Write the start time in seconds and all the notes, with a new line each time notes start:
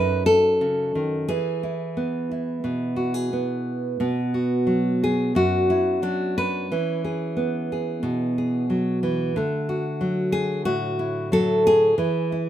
Already playing: F#2 F#3 D#4 B4
0.26 A4
0.61 C#3
0.95 D#3
1.28 E3 G#4
1.63 E4
1.97 B3
2.31 E4
2.64 B2
2.96 F#4
3.14 G#4
3.33 B3
4.00 B2 B3
4.34 F#4
4.67 F#3
5.04 G#4
5.35 F#2 F#4
5.70 E4
6.02 F#3 D4
6.38 B4
6.72 E3 C#4
7.04 G#4
7.37 B3
7.72 G#4
8.03 B2
8.38 G#4
8.70 F#3
9.03 E3
9.36 D3 A3
9.69 F#4
10.01 F#3
10.32 G#4
10.65 A2 F#4
10.99 E4
11.32 F#3 A4
11.67 G#4
11.98 E3 E4
12.32 E4